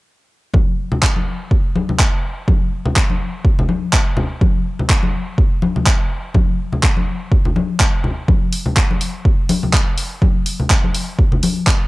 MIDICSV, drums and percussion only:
0, 0, Header, 1, 2, 480
1, 0, Start_track
1, 0, Tempo, 483871
1, 538, Time_signature, 4, 2, 24, 8
1, 11782, End_track
2, 0, Start_track
2, 0, Title_t, "Drums"
2, 533, Note_on_c, 9, 63, 81
2, 537, Note_on_c, 9, 36, 115
2, 632, Note_off_c, 9, 63, 0
2, 637, Note_off_c, 9, 36, 0
2, 910, Note_on_c, 9, 64, 76
2, 1009, Note_off_c, 9, 64, 0
2, 1018, Note_on_c, 9, 36, 113
2, 1019, Note_on_c, 9, 39, 118
2, 1117, Note_off_c, 9, 36, 0
2, 1118, Note_off_c, 9, 39, 0
2, 1153, Note_on_c, 9, 63, 59
2, 1252, Note_off_c, 9, 63, 0
2, 1498, Note_on_c, 9, 36, 111
2, 1597, Note_off_c, 9, 36, 0
2, 1741, Note_on_c, 9, 63, 91
2, 1840, Note_off_c, 9, 63, 0
2, 1875, Note_on_c, 9, 64, 78
2, 1974, Note_off_c, 9, 64, 0
2, 1978, Note_on_c, 9, 36, 117
2, 1979, Note_on_c, 9, 39, 119
2, 2077, Note_off_c, 9, 36, 0
2, 2078, Note_off_c, 9, 39, 0
2, 2458, Note_on_c, 9, 36, 119
2, 2461, Note_on_c, 9, 63, 83
2, 2557, Note_off_c, 9, 36, 0
2, 2560, Note_off_c, 9, 63, 0
2, 2831, Note_on_c, 9, 64, 83
2, 2930, Note_off_c, 9, 64, 0
2, 2938, Note_on_c, 9, 36, 120
2, 2939, Note_on_c, 9, 39, 120
2, 3037, Note_off_c, 9, 36, 0
2, 3038, Note_off_c, 9, 39, 0
2, 3072, Note_on_c, 9, 63, 61
2, 3171, Note_off_c, 9, 63, 0
2, 3418, Note_on_c, 9, 36, 116
2, 3517, Note_off_c, 9, 36, 0
2, 3557, Note_on_c, 9, 64, 97
2, 3657, Note_off_c, 9, 64, 0
2, 3657, Note_on_c, 9, 63, 89
2, 3756, Note_off_c, 9, 63, 0
2, 3898, Note_on_c, 9, 36, 118
2, 3899, Note_on_c, 9, 39, 122
2, 3997, Note_off_c, 9, 36, 0
2, 3998, Note_off_c, 9, 39, 0
2, 4132, Note_on_c, 9, 64, 97
2, 4232, Note_off_c, 9, 64, 0
2, 4378, Note_on_c, 9, 36, 122
2, 4380, Note_on_c, 9, 63, 92
2, 4477, Note_off_c, 9, 36, 0
2, 4479, Note_off_c, 9, 63, 0
2, 4756, Note_on_c, 9, 64, 75
2, 4855, Note_off_c, 9, 64, 0
2, 4858, Note_on_c, 9, 36, 124
2, 4859, Note_on_c, 9, 39, 120
2, 4957, Note_off_c, 9, 36, 0
2, 4958, Note_off_c, 9, 39, 0
2, 4988, Note_on_c, 9, 63, 72
2, 5087, Note_off_c, 9, 63, 0
2, 5337, Note_on_c, 9, 36, 121
2, 5437, Note_off_c, 9, 36, 0
2, 5577, Note_on_c, 9, 63, 98
2, 5677, Note_off_c, 9, 63, 0
2, 5715, Note_on_c, 9, 64, 80
2, 5814, Note_off_c, 9, 64, 0
2, 5818, Note_on_c, 9, 36, 121
2, 5819, Note_on_c, 9, 39, 117
2, 5917, Note_off_c, 9, 36, 0
2, 5918, Note_off_c, 9, 39, 0
2, 6294, Note_on_c, 9, 63, 94
2, 6297, Note_on_c, 9, 36, 116
2, 6393, Note_off_c, 9, 63, 0
2, 6397, Note_off_c, 9, 36, 0
2, 6671, Note_on_c, 9, 64, 74
2, 6770, Note_off_c, 9, 64, 0
2, 6777, Note_on_c, 9, 36, 122
2, 6778, Note_on_c, 9, 39, 113
2, 6877, Note_off_c, 9, 36, 0
2, 6878, Note_off_c, 9, 39, 0
2, 6912, Note_on_c, 9, 63, 65
2, 7011, Note_off_c, 9, 63, 0
2, 7257, Note_on_c, 9, 36, 120
2, 7356, Note_off_c, 9, 36, 0
2, 7394, Note_on_c, 9, 64, 77
2, 7493, Note_off_c, 9, 64, 0
2, 7499, Note_on_c, 9, 63, 97
2, 7599, Note_off_c, 9, 63, 0
2, 7737, Note_on_c, 9, 36, 122
2, 7738, Note_on_c, 9, 39, 116
2, 7836, Note_off_c, 9, 36, 0
2, 7837, Note_off_c, 9, 39, 0
2, 7975, Note_on_c, 9, 64, 85
2, 8074, Note_off_c, 9, 64, 0
2, 8216, Note_on_c, 9, 36, 114
2, 8216, Note_on_c, 9, 63, 87
2, 8316, Note_off_c, 9, 36, 0
2, 8316, Note_off_c, 9, 63, 0
2, 8457, Note_on_c, 9, 46, 102
2, 8556, Note_off_c, 9, 46, 0
2, 8587, Note_on_c, 9, 64, 78
2, 8686, Note_off_c, 9, 64, 0
2, 8697, Note_on_c, 9, 36, 118
2, 8697, Note_on_c, 9, 39, 112
2, 8796, Note_off_c, 9, 36, 0
2, 8796, Note_off_c, 9, 39, 0
2, 8834, Note_on_c, 9, 63, 64
2, 8934, Note_off_c, 9, 63, 0
2, 8936, Note_on_c, 9, 46, 91
2, 9036, Note_off_c, 9, 46, 0
2, 9176, Note_on_c, 9, 36, 112
2, 9275, Note_off_c, 9, 36, 0
2, 9416, Note_on_c, 9, 46, 101
2, 9417, Note_on_c, 9, 63, 96
2, 9516, Note_off_c, 9, 46, 0
2, 9516, Note_off_c, 9, 63, 0
2, 9554, Note_on_c, 9, 64, 73
2, 9653, Note_off_c, 9, 64, 0
2, 9656, Note_on_c, 9, 36, 117
2, 9657, Note_on_c, 9, 39, 114
2, 9756, Note_off_c, 9, 36, 0
2, 9756, Note_off_c, 9, 39, 0
2, 9896, Note_on_c, 9, 46, 89
2, 9995, Note_off_c, 9, 46, 0
2, 10137, Note_on_c, 9, 36, 109
2, 10140, Note_on_c, 9, 63, 86
2, 10236, Note_off_c, 9, 36, 0
2, 10240, Note_off_c, 9, 63, 0
2, 10377, Note_on_c, 9, 46, 101
2, 10476, Note_off_c, 9, 46, 0
2, 10512, Note_on_c, 9, 64, 71
2, 10611, Note_off_c, 9, 64, 0
2, 10617, Note_on_c, 9, 36, 113
2, 10618, Note_on_c, 9, 39, 111
2, 10716, Note_off_c, 9, 36, 0
2, 10717, Note_off_c, 9, 39, 0
2, 10753, Note_on_c, 9, 63, 54
2, 10852, Note_off_c, 9, 63, 0
2, 10858, Note_on_c, 9, 46, 86
2, 10957, Note_off_c, 9, 46, 0
2, 11097, Note_on_c, 9, 36, 111
2, 11196, Note_off_c, 9, 36, 0
2, 11229, Note_on_c, 9, 64, 83
2, 11328, Note_off_c, 9, 64, 0
2, 11337, Note_on_c, 9, 46, 105
2, 11342, Note_on_c, 9, 63, 86
2, 11437, Note_off_c, 9, 46, 0
2, 11441, Note_off_c, 9, 63, 0
2, 11577, Note_on_c, 9, 36, 113
2, 11578, Note_on_c, 9, 39, 109
2, 11677, Note_off_c, 9, 36, 0
2, 11678, Note_off_c, 9, 39, 0
2, 11782, End_track
0, 0, End_of_file